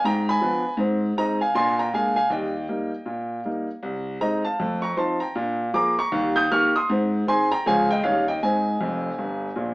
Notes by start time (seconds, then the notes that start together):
0.04 G#2 G5 A#5
0.29 G#5 B5
0.41 F3 B3 D4
0.77 G#2 C4
1.17 G#3 C4 D#4 D#5 A#5
1.41 F5 G#5
1.55 A#2 D4 G#5 C6
1.79 G5 A#5
1.94 G#3 A#3 D4 F5 G#5
2.16 F5 G#5
2.30 D#2 G3 D#5 G5
2.69 G3 A#3 D#4
3.06 A#2
3.45 G3 A#3 D#4
3.83 C2
4.21 G#3 C4 D#4 D#5 A#5
4.45 F5 A5
4.60 F2 A3
4.82 A#5 C#6
4.97 F3 C4 D#4 A5 C6
5.20 G5 A#5
5.35 A#2 D4
5.74 F3 A#3 G#4 A#5 D6
5.99 A#5 C#6
6.12 D#2 G3
6.36 D#6 G6
6.51 D#3 A#3 G4 C#6 F6
6.76 C6 D#6
6.90 G#2 C4
7.27 D#3 C4 G#4 G#5 C6
7.52 G5 A#5
7.66 C#2 F3 C#4 G#4 F5 G#5
7.91 D#5 G5
8.03 D#2 D#3 G3 C#4 D#4 C#5 F5
8.28 D#5 G5
8.43 G#2 C4 D#5 G#5
8.81 F1 F2
9.18 G1 G2
9.56 A#1 A#2